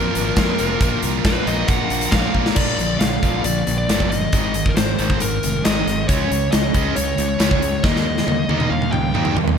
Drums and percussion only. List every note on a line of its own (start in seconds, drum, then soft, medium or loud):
0.15 closed hi-hat medium
0.36 kick loud
0.36 snare loud
0.36 closed hi-hat medium
0.59 closed hi-hat medium
0.81 kick loud
0.81 closed hi-hat medium
1.03 closed hi-hat medium
1.25 kick loud
1.25 snare loud
1.25 closed hi-hat medium
1.47 closed hi-hat medium
1.68 kick loud
1.68 closed hi-hat medium
1.90 closed hi-hat medium
2.01 closed hi-hat medium
2.12 kick loud
2.12 snare loud
2.12 closed hi-hat medium
2.35 kick medium
2.46 snare medium
2.56 kick loud
2.56 crash loud
2.79 closed hi-hat medium
3.01 snare loud
3.01 closed hi-hat medium
3.23 kick medium
3.23 closed hi-hat medium
3.44 closed hi-hat medium
3.67 closed hi-hat medium
3.89 snare loud
3.89 closed hi-hat medium
4.00 kick medium
4.12 snare soft
4.12 closed hi-hat medium
4.33 kick loud
4.33 closed hi-hat medium
4.54 closed hi-hat medium
4.66 kick medium
4.77 snare loud
4.77 closed hi-hat medium
4.99 closed hi-hat medium
5.10 kick medium
5.20 closed hi-hat medium
5.43 closed hi-hat medium
5.65 snare loud
5.65 closed hi-hat medium
5.88 snare soft
5.88 closed hi-hat medium
6.09 kick loud
6.09 closed hi-hat medium
6.32 closed hi-hat medium
6.52 snare loud
6.52 closed hi-hat medium
6.74 kick medium
6.74 closed hi-hat medium
6.96 closed hi-hat medium
7.18 closed hi-hat medium
7.40 snare loud
7.40 closed hi-hat medium
7.51 kick medium
7.62 closed hi-hat medium
7.84 kick loud
7.84 snare medium
7.96 snare medium
8.18 snare medium
8.28 high tom medium
8.49 high tom medium
8.60 mid tom medium
8.82 mid tom medium
8.93 mid tom medium
9.15 mid tom medium
9.25 floor tom medium
9.37 floor tom medium
9.48 floor tom medium